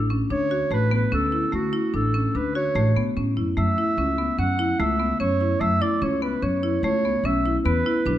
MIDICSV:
0, 0, Header, 1, 4, 480
1, 0, Start_track
1, 0, Tempo, 408998
1, 1792, Time_signature, 5, 2, 24, 8
1, 9605, End_track
2, 0, Start_track
2, 0, Title_t, "Clarinet"
2, 0, Program_c, 0, 71
2, 368, Note_on_c, 0, 73, 91
2, 807, Note_off_c, 0, 73, 0
2, 859, Note_on_c, 0, 71, 92
2, 1070, Note_off_c, 0, 71, 0
2, 1095, Note_on_c, 0, 71, 81
2, 1308, Note_off_c, 0, 71, 0
2, 1334, Note_on_c, 0, 69, 85
2, 1771, Note_off_c, 0, 69, 0
2, 1813, Note_on_c, 0, 66, 80
2, 2250, Note_off_c, 0, 66, 0
2, 2291, Note_on_c, 0, 69, 82
2, 2769, Note_on_c, 0, 71, 76
2, 2786, Note_off_c, 0, 69, 0
2, 2993, Note_off_c, 0, 71, 0
2, 3000, Note_on_c, 0, 73, 85
2, 3670, Note_off_c, 0, 73, 0
2, 4199, Note_on_c, 0, 76, 97
2, 5109, Note_off_c, 0, 76, 0
2, 5154, Note_on_c, 0, 78, 89
2, 5632, Note_on_c, 0, 76, 101
2, 5649, Note_off_c, 0, 78, 0
2, 6095, Note_off_c, 0, 76, 0
2, 6102, Note_on_c, 0, 73, 91
2, 6579, Note_on_c, 0, 76, 101
2, 6597, Note_off_c, 0, 73, 0
2, 6828, Note_on_c, 0, 74, 86
2, 6846, Note_off_c, 0, 76, 0
2, 7080, Note_on_c, 0, 73, 85
2, 7098, Note_off_c, 0, 74, 0
2, 7301, Note_off_c, 0, 73, 0
2, 7308, Note_on_c, 0, 71, 76
2, 7543, Note_on_c, 0, 73, 84
2, 7560, Note_off_c, 0, 71, 0
2, 8022, Note_off_c, 0, 73, 0
2, 8029, Note_on_c, 0, 73, 96
2, 8516, Note_on_c, 0, 76, 92
2, 8534, Note_off_c, 0, 73, 0
2, 8875, Note_off_c, 0, 76, 0
2, 8980, Note_on_c, 0, 71, 97
2, 9605, Note_off_c, 0, 71, 0
2, 9605, End_track
3, 0, Start_track
3, 0, Title_t, "Marimba"
3, 0, Program_c, 1, 12
3, 120, Note_on_c, 1, 61, 69
3, 253, Note_off_c, 1, 61, 0
3, 357, Note_on_c, 1, 62, 68
3, 491, Note_off_c, 1, 62, 0
3, 600, Note_on_c, 1, 66, 70
3, 733, Note_off_c, 1, 66, 0
3, 839, Note_on_c, 1, 57, 78
3, 972, Note_off_c, 1, 57, 0
3, 1072, Note_on_c, 1, 59, 70
3, 1207, Note_off_c, 1, 59, 0
3, 1314, Note_on_c, 1, 61, 72
3, 1449, Note_off_c, 1, 61, 0
3, 1552, Note_on_c, 1, 64, 59
3, 1687, Note_off_c, 1, 64, 0
3, 1787, Note_on_c, 1, 57, 70
3, 1924, Note_off_c, 1, 57, 0
3, 2029, Note_on_c, 1, 64, 66
3, 2165, Note_off_c, 1, 64, 0
3, 2273, Note_on_c, 1, 62, 69
3, 2408, Note_off_c, 1, 62, 0
3, 2513, Note_on_c, 1, 61, 64
3, 2648, Note_off_c, 1, 61, 0
3, 2757, Note_on_c, 1, 62, 64
3, 2891, Note_off_c, 1, 62, 0
3, 2997, Note_on_c, 1, 66, 75
3, 3131, Note_off_c, 1, 66, 0
3, 3235, Note_on_c, 1, 57, 74
3, 3370, Note_off_c, 1, 57, 0
3, 3479, Note_on_c, 1, 59, 72
3, 3613, Note_off_c, 1, 59, 0
3, 3717, Note_on_c, 1, 61, 71
3, 3851, Note_off_c, 1, 61, 0
3, 3954, Note_on_c, 1, 64, 58
3, 4089, Note_off_c, 1, 64, 0
3, 4191, Note_on_c, 1, 57, 73
3, 4327, Note_off_c, 1, 57, 0
3, 4436, Note_on_c, 1, 64, 64
3, 4571, Note_off_c, 1, 64, 0
3, 4672, Note_on_c, 1, 61, 68
3, 4807, Note_off_c, 1, 61, 0
3, 4909, Note_on_c, 1, 59, 68
3, 5045, Note_off_c, 1, 59, 0
3, 5148, Note_on_c, 1, 61, 62
3, 5284, Note_off_c, 1, 61, 0
3, 5388, Note_on_c, 1, 64, 76
3, 5524, Note_off_c, 1, 64, 0
3, 5630, Note_on_c, 1, 57, 81
3, 5766, Note_off_c, 1, 57, 0
3, 5864, Note_on_c, 1, 59, 65
3, 6002, Note_off_c, 1, 59, 0
3, 6104, Note_on_c, 1, 61, 72
3, 6242, Note_off_c, 1, 61, 0
3, 6347, Note_on_c, 1, 64, 57
3, 6484, Note_off_c, 1, 64, 0
3, 6586, Note_on_c, 1, 57, 70
3, 6723, Note_off_c, 1, 57, 0
3, 6825, Note_on_c, 1, 64, 69
3, 6963, Note_off_c, 1, 64, 0
3, 7061, Note_on_c, 1, 61, 68
3, 7199, Note_off_c, 1, 61, 0
3, 7302, Note_on_c, 1, 59, 68
3, 7440, Note_off_c, 1, 59, 0
3, 7539, Note_on_c, 1, 61, 67
3, 7678, Note_off_c, 1, 61, 0
3, 7784, Note_on_c, 1, 64, 71
3, 7921, Note_off_c, 1, 64, 0
3, 8029, Note_on_c, 1, 57, 79
3, 8166, Note_off_c, 1, 57, 0
3, 8272, Note_on_c, 1, 59, 69
3, 8407, Note_off_c, 1, 59, 0
3, 8509, Note_on_c, 1, 61, 81
3, 8645, Note_off_c, 1, 61, 0
3, 8749, Note_on_c, 1, 64, 64
3, 8885, Note_off_c, 1, 64, 0
3, 8983, Note_on_c, 1, 59, 81
3, 9121, Note_off_c, 1, 59, 0
3, 9226, Note_on_c, 1, 64, 74
3, 9363, Note_off_c, 1, 64, 0
3, 9464, Note_on_c, 1, 62, 71
3, 9602, Note_off_c, 1, 62, 0
3, 9605, End_track
4, 0, Start_track
4, 0, Title_t, "Upright bass"
4, 0, Program_c, 2, 32
4, 0, Note_on_c, 2, 33, 83
4, 236, Note_off_c, 2, 33, 0
4, 355, Note_on_c, 2, 38, 79
4, 718, Note_off_c, 2, 38, 0
4, 827, Note_on_c, 2, 33, 90
4, 1192, Note_off_c, 2, 33, 0
4, 1317, Note_on_c, 2, 38, 80
4, 1679, Note_off_c, 2, 38, 0
4, 1793, Note_on_c, 2, 38, 84
4, 1975, Note_off_c, 2, 38, 0
4, 2275, Note_on_c, 2, 33, 81
4, 2638, Note_off_c, 2, 33, 0
4, 2756, Note_on_c, 2, 38, 77
4, 3118, Note_off_c, 2, 38, 0
4, 3228, Note_on_c, 2, 33, 101
4, 3412, Note_off_c, 2, 33, 0
4, 3479, Note_on_c, 2, 47, 71
4, 3692, Note_off_c, 2, 47, 0
4, 3717, Note_on_c, 2, 45, 71
4, 3931, Note_off_c, 2, 45, 0
4, 3948, Note_on_c, 2, 42, 63
4, 4166, Note_off_c, 2, 42, 0
4, 4192, Note_on_c, 2, 42, 86
4, 4374, Note_off_c, 2, 42, 0
4, 4663, Note_on_c, 2, 37, 82
4, 5030, Note_off_c, 2, 37, 0
4, 5142, Note_on_c, 2, 42, 82
4, 5510, Note_off_c, 2, 42, 0
4, 5626, Note_on_c, 2, 37, 92
4, 5992, Note_off_c, 2, 37, 0
4, 6106, Note_on_c, 2, 42, 76
4, 6472, Note_off_c, 2, 42, 0
4, 6579, Note_on_c, 2, 42, 92
4, 6766, Note_off_c, 2, 42, 0
4, 7064, Note_on_c, 2, 37, 90
4, 7431, Note_off_c, 2, 37, 0
4, 7538, Note_on_c, 2, 42, 81
4, 7907, Note_off_c, 2, 42, 0
4, 8013, Note_on_c, 2, 37, 94
4, 8384, Note_off_c, 2, 37, 0
4, 8491, Note_on_c, 2, 35, 82
4, 8863, Note_off_c, 2, 35, 0
4, 8980, Note_on_c, 2, 40, 92
4, 9167, Note_off_c, 2, 40, 0
4, 9453, Note_on_c, 2, 35, 96
4, 9605, Note_off_c, 2, 35, 0
4, 9605, End_track
0, 0, End_of_file